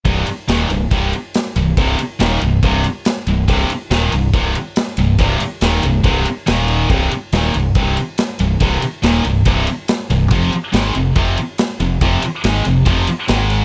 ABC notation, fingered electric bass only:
X:1
M:4/4
L:1/8
Q:1/4=141
K:F
V:1 name="Fingered electric bass" clef=bass
C,,, z _E,,, C,,, C,,, z2 C,,, | C,,, z _E,,, C,,, C,,, z2 C,,, | C,,, z _E,,, C,,, C,,, z2 C,,, | C,,, z _E,,, C,,, C,,, z E,,,2 |
C,,, z _E,,, C,,, C,,, z2 C,,, | C,,, z _E,,, C,,, C,,, z2 C,,, | F,,, z _A,,, F,,, F,,, z2 F,,, | F,,, z _A,,, F,,, F,,, z A,,,2 |]